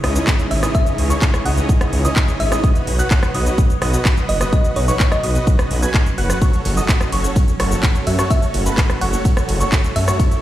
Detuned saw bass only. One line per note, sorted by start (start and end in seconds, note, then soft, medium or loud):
0.04 0.19 C#2 loud
0.51 0.66 G#1 medium
0.98 1.13 C#2 loud
1.46 1.60 C#2 medium
1.93 2.08 C#2 loud
2.40 2.55 G#1 medium
2.87 3.02 B1 loud
3.35 3.49 B1 medium
3.82 3.97 B1 loud
4.29 4.44 F#1 medium
4.76 4.91 B1 loud
5.24 5.38 B1 loud
5.71 5.86 B1 loud
6.18 6.33 F#1 medium
6.65 6.80 F#1 loud
7.12 7.27 F#1 medium
7.60 7.74 F#1 loud
8.07 8.22 F#2 medium
8.54 8.69 F#1 loud
9.01 9.16 F#1 loud
9.49 9.63 F#1 loud
9.96 10.11 F#2 medium